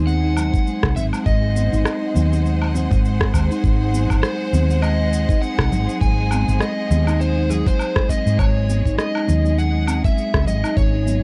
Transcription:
Already playing: fretless electric bass D#2, string section G#3 G#4 C5
0.07 steel tongue drum C4, electric slide guitar F#5, cabasa
0.24 steel tongue drum D#4
0.37 steel tongue drum F#3, cabasa, low woodblock
0.54 kick, cabasa
0.67 steel tongue drum G#3, string section F#5, cabasa
0.83 fretless electric bass C2, steel tongue drum G#3, kick, cross-stick, high bongo
0.96 fretless electric bass G#1, steel tongue drum C4, electric slide guitar E5, low conga, cabasa
1.13 steel tongue drum G#3, cabasa, low woodblock
1.26 fretless electric bass G#1, steel tongue drum G#3, electric slide guitar D#5, kick, cabasa
1.43 steel tongue drum G#3
1.56 steel tongue drum G#3, high conga, cabasa
1.72 fretless electric bass G#1, steel tongue drum D#4, cabasa
1.85 cross-stick, cabasa, low woodblock
2.02 steel tongue drum D#4
2.15 fretless electric bass D#2, steel tongue drum F#3, high conga, low conga, cabasa
2.32 steel tongue drum D#4, cabasa
2.45 steel tongue drum G#3, cabasa
2.62 steel tongue drum G#3, low woodblock
2.74 steel tongue drum C4, high bongo, low conga, cabasa
2.91 fretless electric bass G#1, steel tongue drum G#3, kick, high bongo, cabasa
3.04 steel tongue drum G#3, cabasa
3.21 kick, cross-stick
3.34 fretless electric bass D#2, steel tongue drum G#3, kick, cabasa, low woodblock
3.51 steel tongue drum D#4, cabasa
3.64 fretless electric bass G#1, kick, cabasa
3.81 steel tongue drum D#4
3.93 steel tongue drum F#3, high conga, cabasa
4.10 fretless electric bass G#1, kick, cabasa, low woodblock
4.23 steel tongue drum G#3, electric slide guitar C5, cross-stick, cabasa
4.40 steel tongue drum G#3
4.53 fretless electric bass D#2, steel tongue drum C4, high conga, low conga, cabasa
4.69 steel tongue drum G#3, high bongo, high conga, cabasa
4.82 steel tongue drum G#3, electric slide guitar D#5, cabasa, low woodblock
4.99 steel tongue drum G#3
5.12 steel tongue drum G#3, cabasa
5.29 steel tongue drum D#4, kick, cabasa
5.42 steel tongue drum C4, electric slide guitar F#5, cabasa
5.59 fretless electric bass C2, kick, cross-stick, high bongo, low woodblock
5.72 fretless electric bass G#1, steel tongue drum F#3, low conga, cabasa
5.88 steel tongue drum D#4, cabasa
6.01 fretless electric bass G#1, steel tongue drum G#3, electric slide guitar G#5, kick, cabasa
6.18 steel tongue drum G#3
6.31 steel tongue drum C4, high conga, cabasa, low woodblock
6.48 fretless electric bass G#1, steel tongue drum G#3, cabasa
6.60 steel tongue drum G#3, electric slide guitar D#5, cross-stick, cabasa
6.78 steel tongue drum G#3
6.90 fretless electric bass D#2, steel tongue drum G#3, high conga, low conga, cabasa
7.07 steel tongue drum D#4, cabasa, low woodblock
7.20 steel tongue drum C4, electric slide guitar C5, cabasa
7.37 steel tongue drum D#4
7.49 steel tongue drum F#3, electric slide guitar G#4, high bongo, low conga, cabasa
7.66 electric slide guitar C5, kick, high bongo, cabasa
7.79 steel tongue drum G#3, cabasa, low woodblock
7.96 steel tongue drum G#3, kick, cross-stick
8.09 steel tongue drum C4, electric slide guitar D#5, kick, cabasa
8.26 fretless electric bass G#2, steel tongue drum G#3, cabasa
8.39 fretless electric bass G#1, steel tongue drum G#3, electric slide guitar C#5, kick, cabasa, low woodblock
8.56 steel tongue drum G#3
8.68 steel tongue drum G#3, high conga, cabasa
8.85 fretless electric bass G#1, steel tongue drum D#4, kick, cabasa
8.98 steel tongue drum C#4, electric slide guitar D#5, cross-stick, cabasa
9.15 steel tongue drum D#4, low woodblock
9.28 fretless electric bass D#2, steel tongue drum F#3, high conga, low conga, cabasa
9.44 steel tongue drum D#4, high bongo, high conga, cabasa
9.58 steel tongue drum G#3, electric slide guitar F#5, cabasa
9.75 steel tongue drum G#3
9.87 steel tongue drum C4, cabasa, low woodblock
10.04 electric slide guitar E5, kick, cabasa
10.17 steel tongue drum G#3, cabasa
10.34 fretless electric bass C#2, steel tongue drum G#3, kick, cross-stick, high bongo
10.46 fretless electric bass G#1, steel tongue drum G#3, electric slide guitar D#5, low conga, cabasa
10.64 steel tongue drum D#4, cabasa, low woodblock
10.77 fretless electric bass G#1, electric slide guitar C#5, kick, cabasa
10.94 steel tongue drum D#4
11.06 steel tongue drum F#3, high conga, cabasa

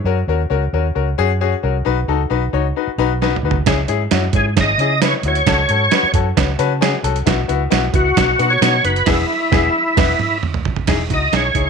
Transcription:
0.04 fingered electric bass F#2, upright piano C#4 F#4 A#4
0.28 fingered electric bass D#2, upright piano C#4 F#4 A#4
0.50 fingered electric bass C#2, upright piano C#4 F#4 A#4
0.73 fingered electric bass D#2, upright piano C#4 F#4 A#4
0.95 fingered electric bass C#2, upright piano C#4 F#4 A#4
1.18 fingered electric bass F#2, upright piano C#4 F#4 G#4
1.41 upright piano C#4 F#4 G#4
1.63 fingered electric bass C2, upright piano C#4 F#4 A#4
1.85 fingered electric bass B1, upright piano D#4 F#4 B4
2.08 fingered electric bass C#2, upright piano D#4 F#4 A4
2.30 fingered electric bass B1, upright piano D#4 F#4 B4
2.53 fingered electric bass C#2, upright piano D#4 F#4 C#5
2.76 upright piano D#4 F#4 B4
2.87 muted fingered electric bass stroke
2.98 fingered electric bass B1, upright piano D#4 F#4 B4
3.22 upright piano D#4 F#4 B4, snare
3.36 mid tom
3.43 fingered electric bass D2, upright piano D#4 F#4 B4
3.51 floor tom
3.66 fingered electric bass C#2, upright piano C#4 E4 G#4, kick, snare, closed hi-hat
3.88 fingered electric bass G#2, upright piano C#4 E4 G#4, closed hi-hat
4.11 fingered electric bass F#2, upright piano C#4 E4 F#4, snare, closed hi-hat
4.33 fingered electric bass G#2, upright piano C#4 E4 G#4, tonewheel organ G#4, kick, closed hi-hat
4.56 fingered electric bass G#1, upright piano C#4 E4 G#4, kick, snare, closed hi-hat
4.61 tonewheel organ D#5
4.78 fingered electric bass C#3, upright piano C#4 E4 G#4, closed hi-hat
5.02 upright piano C#4 E4 B4, tonewheel organ C#5, snare, closed hi-hat
5.23 fingered electric bass D2, upright piano C#4 E4 F#4, closed hi-hat
5.28 tonewheel organ C#5
5.35 closed hi-hat
5.47 fingered electric bass C#2, upright piano C#4 F#4 A4, kick, snare, closed hi-hat
5.69 fingered electric bass G#2, upright piano C#4 F#4 A4, closed hi-hat
5.91 upright piano C#4 F#4 B4, snare, closed hi-hat
6.03 muted fingered electric bass stroke
6.14 fingered electric bass F#2, upright piano C#4 F#4 A4, kick, closed hi-hat
6.37 fingered electric bass C#2, upright piano C#4 F#4 B4, kick, snare, closed hi-hat
6.59 fingered electric bass C#3, upright piano C#4 F#4 B4 A5, closed hi-hat
6.81 upright piano C#4 F#4 G#4 G#5, snare, closed hi-hat
7.04 fingered electric bass C2, upright piano C#4 F#4 A4 F#5, closed hi-hat
7.16 closed hi-hat
7.26 fingered electric bass B1, upright piano B3 E4 F#4, kick, snare, closed hi-hat
7.48 fingered electric bass C#2, upright piano B3 E4 F#4, closed hi-hat
7.70 fingered electric bass B1, upright piano B3 E4 F#4, snare, closed hi-hat
7.93 fingered electric bass C#2, upright piano B3 E4 F#4, tonewheel organ F#4, kick, closed hi-hat
8.17 fingered electric bass B1, upright piano B3 D#4 F#4, kick, snare, closed hi-hat
8.39 fingered electric bass B2, upright piano B3 D#4 F#4, closed hi-hat
8.50 tonewheel organ C#5
8.61 fingered electric bass B2, upright piano B3 D#4 F#4, snare, closed hi-hat
8.84 fingered electric bass F#1, upright piano B3 D#4 F#4, tonewheel organ B4, closed hi-hat
8.96 closed hi-hat
9.06 fingered electric bass E1, upright piano B3 E4 G#4, tonewheel organ E4, kick, snare, crash
9.51 fingered electric bass E1, upright piano B3 E4 G#4, kick, snare
9.97 fingered electric bass E1, upright piano B3 E4 B4, kick, snare, crash
10.19 high tom
10.43 mid tom
10.54 mid tom
10.65 floor tom
10.76 floor tom
10.87 fingered electric bass E1, upright piano D#4 E4 G#4, kick, snare, closed hi-hat, crash
11.10 fingered electric bass C#2, upright piano D#4 E4 F#4, tonewheel organ D#5, kick, closed hi-hat
11.32 fingered electric bass B1, upright piano D#4 E4 G#4, tonewheel organ C#5, snare, closed hi-hat
11.55 fingered electric bass C#2, upright piano D#4 E4 G#4, kick, closed hi-hat

